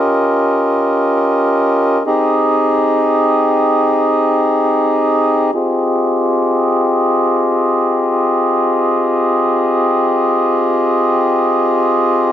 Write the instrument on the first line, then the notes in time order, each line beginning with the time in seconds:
accordion
Already playing: C#4 F4 G4 A#4 D#5
2.06 C4 D#4 G4 G#4 D#5
5.54 C4 F4 G4 G#4 D#5